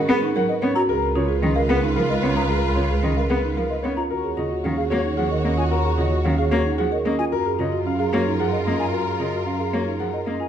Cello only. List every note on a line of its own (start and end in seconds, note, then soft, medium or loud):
0.09 0.19 B3 loud
0.35 0.45 F#3 medium
0.62 0.72 B3 medium
1.16 1.26 C#3 medium
1.43 1.53 D#3 medium
1.69 1.79 B3 loud
1.96 2.06 F3 medium
2.22 2.33 B3 medium
2.76 2.86 C#3 medium
3.03 3.13 D#3 medium
3.30 3.40 B3 medium
3.57 3.67 F3 medium
3.84 3.94 B3 medium
4.37 4.47 C#3 medium
4.65 4.74 D#3 medium
4.91 5.01 A#3 medium
5.18 5.28 F3 medium
5.44 5.54 A#3 medium
5.97 6.08 C#3 medium
6.25 6.35 D#3 medium
6.52 6.62 A#3 loud
6.79 6.88 F3 medium
7.05 7.15 A#3 medium
7.59 7.69 C#3 medium
8.13 8.23 A#3 medium
8.40 8.50 F3 medium
8.67 8.76 A#3 medium
9.19 9.29 C#3 medium
9.73 9.83 A#3 medium
10.00 10.10 F3 medium
10.27 10.37 A#3 medium